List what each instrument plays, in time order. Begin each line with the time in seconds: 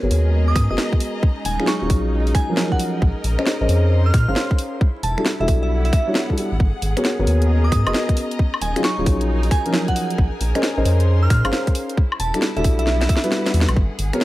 Already playing: analog synth pad G#3 B3 C#4 A#4, string section G#4
0.03 analog synth bass G#1, grand piano B3 F#4 G#4 A#4 C#5
0.11 analog synth bass D#2, open hi-hat
0.17 string section D#5
0.27 string section A#5
0.48 synth bell D#6
0.56 analog synth bass G#2, synth bell D#6, finger snap, kick, open hi-hat
0.70 analog synth bass F#1, grand piano B3 F#4 G#4 A#4 D#5, synth bell D#6
0.78 snare
0.93 kick
1.00 open hi-hat
1.23 string section D#4, analog synth pad D#4 G#4, kick
1.45 analog synth bass D#1, string section A#4, synth bell G#5, open hi-hat
1.60 grand piano F#3 C#4 D#4 F4 G#4, finger snap
1.67 synth bell C#6, snare
1.82 analog synth bass D#1, grand piano F#3 C#4 D#4 F4 G#4
1.90 analog synth bass A#1, kick, open hi-hat
1.98 string section D#5
2.27 open hi-hat
2.35 synth bell G#5, finger snap, kick, open hi-hat
2.49 grand piano F3 F#3 C#4 D#4 A#4
2.57 snare
2.72 synth bell F#5, kick
2.79 open hi-hat
3.02 analog synth bass A#1, analog synth pad D#4 C5, kick
3.24 analog synth bass A#1, open hi-hat
3.39 grand piano C#4 G#4 A#4 C5 D#5, finger snap
3.47 snare
3.61 analog synth bass A#1, grand piano C#4 G#4 A#4 C5 D#5
3.69 analog synth bass F2, open hi-hat
3.86 string section C6
4.06 synth bell F6
4.14 analog synth bass A#2, synth bell F6, finger snap, kick, open hi-hat
4.28 analog synth bass G#1, grand piano C#4 G#4 A#4 C5 F5, synth bell F6
4.36 snare
4.51 kick
4.58 open hi-hat
4.81 analog synth pad G3 D4 A4, string section E4, kick
5.03 analog synth bass E1, synth bell A5, open hi-hat
5.18 grand piano G3 D4 E4 F#4 A4, finger snap
5.26 snare
5.37 analog synth bass E1, grand piano G3 D4 E4 F#4 A4, string section B3, synth bell E5
5.48 analog synth bass B1, kick, open hi-hat
5.63 synth bell E5, string section F#5
5.85 synth bell E5, open hi-hat
5.93 synth bell E5, finger snap, kick, open hi-hat
6.07 grand piano G3 D4 E4 F#4 C#5
6.15 snare
6.30 grand piano G3 D4 E4 F#4 A4, kick
6.37 grand piano G3 D4 E4 F#4 A4, open hi-hat
6.52 analog synth bass A1
6.60 analog synth bass G#1, analog synth pad B3 C#4 A#4, string section G#4, kick
6.82 analog synth bass G#1, open hi-hat
6.97 grand piano B3 F#4 G#4 A#4 C#5, finger snap, closed hi-hat
7.05 snare
7.19 analog synth bass G#1, grand piano B3 F#4 G#4 A#4 C#5
7.27 analog synth bass D#2, open hi-hat
7.42 string section D#5 A#5, closed hi-hat
7.64 synth bell D#6
7.72 analog synth bass G#2, synth bell D#6, finger snap, kick, open hi-hat
7.86 analog synth bass F#1, grand piano B3 F#4 G#4 A#4 D#5, synth bell D#6, closed hi-hat, high woodblock
7.94 snare
8.09 kick, closed hi-hat
8.17 open hi-hat
8.31 closed hi-hat
8.39 analog synth pad D#4 G#4, string section D#4, kick
8.54 high woodblock
8.61 analog synth bass D#1, synth bell G#5, open hi-hat
8.71 string section G#5
8.76 grand piano F#3 C#4 D#4 F4 G#4, finger snap, closed hi-hat
8.84 synth bell C#6, snare
8.98 analog synth bass D#1, grand piano F#3 C#4 D#4 F4 G#4
9.04 analog synth bass A#1, string section A#4, kick, open hi-hat
9.21 closed hi-hat
9.43 open hi-hat
9.51 synth bell G#5, finger snap, kick, open hi-hat
9.66 grand piano F3 F#3 C#4 D#4 A#4, closed hi-hat
9.74 snare
9.88 synth bell F#5, kick, closed hi-hat
9.96 open hi-hat
10.10 closed hi-hat
10.18 analog synth bass A#1, analog synth pad C#4 D#4 C5, kick
10.41 analog synth bass A#1, open hi-hat
10.55 grand piano C#4 G#4 A#4 C5 D#5, finger snap, closed hi-hat
10.63 snare
10.77 analog synth bass A#1, grand piano C#4 G#4 A#4 C5 D#5
10.85 analog synth bass F2, open hi-hat
10.94 string section C6
11.00 closed hi-hat
11.23 synth bell F6
11.30 analog synth bass A#2, synth bell F6, finger snap, kick, open hi-hat
11.45 analog synth bass G#1, grand piano C#4 G#4 A#4 C5 F5, synth bell F6, closed hi-hat, high woodblock
11.53 snare
11.67 kick, closed hi-hat
11.75 open hi-hat
11.90 closed hi-hat
11.97 analog synth pad G3 D4 A4, string section E4, kick
12.12 high woodblock
12.20 analog synth bass E1, synth bell A5, open hi-hat
12.34 grand piano G3 D4 E4 F#4 A4, string section B3, finger snap, closed hi-hat
12.42 snare
12.56 analog synth bass E1, grand piano G3 D4 E4 F#4 A4, synth bell E5, closed hi-hat
12.64 analog synth bass B1, kick, open hi-hat
12.79 synth bell E5, string section F#5, closed hi-hat
12.87 snare
13.01 synth bell E5, snare, open hi-hat
13.09 synth bell E5, kick, open hi-hat
13.17 snare
13.24 grand piano G3 D4 E4 F#4 B4, closed hi-hat
13.32 snare
13.46 snare, closed hi-hat
13.54 analog synth bass E2, open hi-hat
13.61 snare
13.69 analog synth bass B1, closed hi-hat, high woodblock
13.76 analog synth bass G#1, analog synth pad B3 C#4 A#4, string section G#4, kick
13.99 analog synth bass G#1, open hi-hat
14.13 grand piano B3 F#4 G#4 A#4 C#5, finger snap, closed hi-hat
14.21 snare